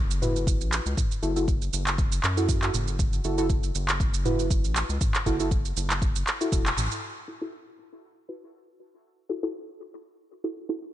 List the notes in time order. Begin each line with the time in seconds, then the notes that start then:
Already playing: F#1
0.11 shaker
0.22 E4 F#4 B4, mid tom, shaker
0.36 shaker
0.47 kick, shaker
0.61 A1, shaker
0.73 clap, shaker
0.86 C#2, shaker
0.97 kick, mid tom, shaker
1.11 shaker
1.23 F#1 E4 F#4 A4, shaker
1.36 E4 F#4 A4, shaker
1.48 kick, shaker
1.62 shaker
1.73 F#1, shaker
1.87 clap, shaker
1.98 kick, shaker
2.12 shaker
2.24 F#2, clap, shaker
2.37 E4 F#4 A4, shaker
2.49 kick, shaker
2.62 E4 F#4 A4, clap, shaker
2.74 F#1, mid tom, shaker
2.88 shaker
2.99 kick, mid tom, shaker
3.13 shaker
3.24 F#1 E4 F#4 A4, shaker
3.38 E4 F#4 A4, shaker
3.50 kick, shaker
3.63 shaker
3.75 F#1, shaker
3.89 clap, shaker
4.00 kick, shaker
4.14 shaker
4.25 E4 F#4 B4, mid tom, shaker
4.39 shaker
4.51 kick, shaker
4.64 A1, shaker
4.76 clap, shaker
4.89 C#2, shaker
5.01 kick, mid tom, shaker
5.15 clap, shaker
5.26 F#1 E4 F#4 A4, kick, shaker
5.40 E4 F#4 A4, shaker
5.51 kick, shaker
5.65 shaker
5.77 F#1, shaker
5.90 clap, shaker
6.02 kick, shaker
6.16 shaker
6.27 clap, shaker
6.41 E4 F#4 A4, shaker
6.52 E1 E4 F#4 A4, kick, shaker
6.66 clap, shaker
6.77 A1, mid tom, shaker
6.92 shaker
7.28 E4 F#4 A4
7.41 E4 F#4 A4
8.29 E4 F#4 B4
9.29 E4 F#4 A4
9.43 E4 F#4 A4
10.44 E4 F#4 A4
10.69 E4 F#4 A4